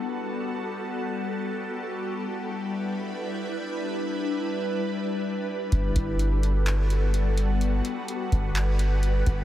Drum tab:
HH |--------|--------|--------|xxxxxxxx|
CP |--------|--------|--------|----x---|
BD |--------|--------|--------|oo------|

HH |xxxxxxxx|
CP |----x---|
BD |---o---o|